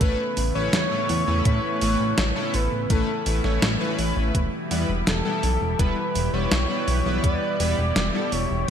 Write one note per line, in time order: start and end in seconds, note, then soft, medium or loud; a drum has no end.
0.00 0.15 A1 loud
0.00 0.19 A2 loud
0.00 4.31 C#3 medium
0.00 8.70 E3 medium
0.00 4.31 A3 medium
0.00 0.19 A3 medium
0.00 4.31 B3 medium
0.00 0.19 C#4 medium
0.00 8.70 E4 medium
0.00 0.19 E4 medium
0.00 0.55 B4 loud
0.00 0.19 B4 loud
0.00 kick loud
0.00 closed hi-hat medium
0.37 0.51 A1 medium
0.37 open hi-hat medium
0.55 0.70 A1 medium
0.55 0.73 A2 medium
0.55 0.73 A3 medium
0.55 0.73 C#4 medium
0.55 0.73 E4 medium
0.55 0.73 B4 loud
0.55 1.42 C#5 loud
0.73 0.88 E2 loud
0.73 snare loud
0.73 closed hi-hat loud
0.91 1.20 A2 medium
0.91 1.20 A3 medium
0.91 1.20 C#4 medium
0.91 1.20 E4 medium
0.91 1.20 B4 medium
1.09 1.24 E2 loud
1.09 open hi-hat medium
1.27 1.42 E2 medium
1.27 1.77 A2 medium
1.27 1.77 A3 medium
1.27 1.77 C#4 medium
1.27 1.77 E4 medium
1.27 1.77 B4 loud
1.45 1.60 A2 loud
1.45 2.55 C#5 loud
1.45 kick loud
1.45 closed hi-hat medium
1.81 1.96 A1 medium
1.81 2.00 A2 loud
1.81 2.00 A3 medium
1.81 2.00 C#4 medium
1.81 2.00 E4 loud
1.81 2.00 B4 loud
1.81 open hi-hat medium
2.00 2.14 A1 medium
2.18 2.32 A1 medium
2.18 snare loud
2.18 closed hi-hat medium
2.36 2.54 A2 loud
2.36 2.54 A3 medium
2.36 2.54 C#4 medium
2.36 2.54 E4 medium
2.36 2.54 A4 loud
2.54 2.68 A1 medium
2.54 2.92 B4 loud
2.54 open hi-hat medium
2.72 2.86 A1 medium
2.90 3.04 A1 loud
2.90 3.08 A2 loud
2.90 3.08 A3 medium
2.90 3.08 C#4 medium
2.90 3.08 E4 medium
2.90 3.63 A4 medium
2.90 3.08 B4 loud
2.90 kick loud
2.90 closed hi-hat medium
3.26 3.41 A1 medium
3.26 3.40 A2 medium
3.26 3.40 A3 medium
3.26 3.40 C#4 medium
3.26 3.40 E4 medium
3.26 3.40 B4 medium
3.26 open hi-hat medium
3.44 3.59 A1 medium
3.44 3.73 A2 medium
3.44 3.73 A3 medium
3.44 3.73 C#4 medium
3.44 3.73 E4 medium
3.44 3.73 C#5 loud
3.44 snare soft
3.62 3.77 A1 loud
3.62 snare loud
3.62 closed hi-hat medium
3.81 4.33 A2 loud
3.81 4.33 A3 medium
3.81 4.33 C#4 medium
3.81 4.33 E4 medium
3.81 4.33 B4 loud
3.98 4.13 A1 loud
3.98 open hi-hat medium
4.17 4.31 A1 medium
4.35 4.49 E1 loud
4.35 8.70 B2 medium
4.35 8.70 G3 medium
4.35 8.70 G4 medium
4.35 kick loud
4.35 closed hi-hat medium
4.71 4.85 E2 medium
4.71 4.89 G3 loud
4.71 4.89 B3 medium
4.71 4.89 E4 medium
4.71 4.89 B4 loud
4.71 open hi-hat medium
4.89 5.03 E1 medium
5.07 5.21 E1 loud
5.07 5.80 A4 medium
5.07 snare loud
5.07 closed hi-hat medium
5.25 5.43 G3 medium
5.25 5.43 B3 medium
5.25 5.43 E4 medium
5.25 5.43 A4 loud
5.43 5.58 B1 medium
5.43 open hi-hat medium
5.61 5.76 E1 medium
5.79 5.94 E1 loud
5.79 5.97 G3 loud
5.79 5.97 B3 medium
5.79 5.97 E4 medium
5.79 6.34 B4 loud
5.79 5.97 B4 loud
5.79 kick loud
5.79 closed hi-hat medium
6.15 6.30 E1 medium
6.15 open hi-hat medium
6.33 6.48 E1 medium
6.33 6.52 G3 loud
6.33 6.52 B3 medium
6.33 6.52 E4 medium
6.33 6.52 B4 loud
6.33 7.23 C#5 loud
6.52 6.66 B1 loud
6.52 snare loud
6.52 closed hi-hat medium
6.70 6.99 G3 medium
6.70 6.99 B3 medium
6.70 6.99 E4 medium
6.70 6.99 B4 loud
6.88 7.02 B1 medium
6.88 open hi-hat medium
7.06 7.20 B1 medium
7.06 7.56 G3 loud
7.06 7.56 B3 medium
7.06 7.56 E4 medium
7.06 7.56 B4 loud
7.23 7.38 E2 loud
7.23 8.33 D5 loud
7.23 kick loud
7.23 closed hi-hat medium
7.60 7.74 E1 medium
7.60 7.78 G3 loud
7.60 7.78 B3 medium
7.60 7.78 E4 medium
7.60 7.78 B4 loud
7.60 open hi-hat medium
7.78 7.92 E1 medium
7.96 8.11 E1 loud
7.96 snare loud
7.96 closed hi-hat medium
8.14 8.32 G3 loud
8.14 8.32 B3 medium
8.14 8.32 E4 medium
8.14 8.32 A4 loud
8.32 8.47 E1 medium
8.32 8.69 C#5 loud
8.32 open hi-hat medium
8.50 8.65 E1 medium